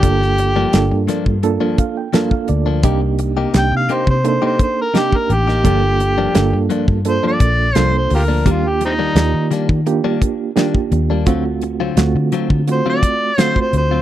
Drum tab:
HH |x-x-x-x-x-x-x-x-|x-x-x-x-x-x-x-x-|x-x-x-x-x-x-x-o-|x-x-x-x-x-x-x-x-|
SD |-o--o-o-----o---|----o-------o--o|----o-------o---|----o-o-----o---|
BD |o------o--o--o--|o------o--o--o--|o------o--o-----|o------o--o--o--|

HH |x-x-x-x-x-x-x-x-|
SD |----o-------o---|
BD |o------o--o--o--|